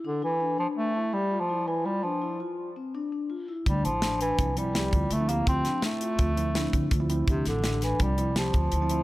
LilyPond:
<<
  \new Staff \with { instrumentName = "Vibraphone" } { \time 5/4 \key d \minor \tempo 4 = 166 d'8 e'8 d'8 d'4 e'8 g'8 f'8 e'8 e'8 | f'8 d'8 e'8 f'4 c'8 d'8 d'8 f'8 e'8 | d'8 e'8 d'8 d'4 e'8 g'8 f'8 e'8 e'8 | f'8 d'8 e'8 f'4 c'8 d'8 d'8 f'8 e'8 |
d'8 e'8 d'8 d'4 e'8 g'8 f'8 e'8 e'8 | }
  \new Staff \with { instrumentName = "Tine electric piano" } { \time 5/4 \key d \minor r1 r4 | r1 r4 | r2 <f c' e'>16 r16 <f c' e'>16 r16 <f c' e'>4 r16 <f c' d'>16 <f c' g'>8~ | <f c' g'>4 r4 <f c' f'>16 r16 <f c' e'>16 r16 <f c' e'>4 r16 <f c' e'>16 <f c' e'>8~ |
<f c' e'>4 r4 <f c' f'>16 r16 <f c' e'>16 r16 <f c' g'>4 r16 <f c' e'>16 <f c' e'>8 | }
  \new Staff \with { instrumentName = "Bass clarinet" } { \clef bass \time 5/4 \key d \minor d8 e4 f8 a4 g8. f8. e8 | g8 f4 r2. r8 | g8 f4 e4 g4. a8 bes8 | c'4 a2.~ a8 r8 |
c8 d4 e8 g4 f2 | }
  \new Staff \with { instrumentName = "Upright bass" } { \clef bass \time 5/4 \key d \minor r1 r4 | r1 r4 | d,8 a,,4. c,4. d,8 d,4 | d,8 r4. d,4. d,8 d,4 |
d,8 a,,4. c,4. d,8 d,4 | }
  \new DrumStaff \with { instrumentName = "Drums" } \drummode { \time 5/4 r4 r4 r4 r4 r4 | r4 r4 r4 r4 r4 | <hh bd>8 hh8 <hh sn>8 hh8 <hh bd>8 hh8 <hh sn>8 <hh bd>8 hh8 hh8 | <hh bd>8 <hh sn>8 <hh sn>8 hh8 <hh bd>8 hh8 <hh sn>8 <hh bd>8 <hh bd>8 hh8 |
<hh bd>8 <hh sn>8 <hh sn>8 <hh sn>8 <hh bd>8 hh8 <hh sn>8 <hh bd>8 hh8 hh8 | }
>>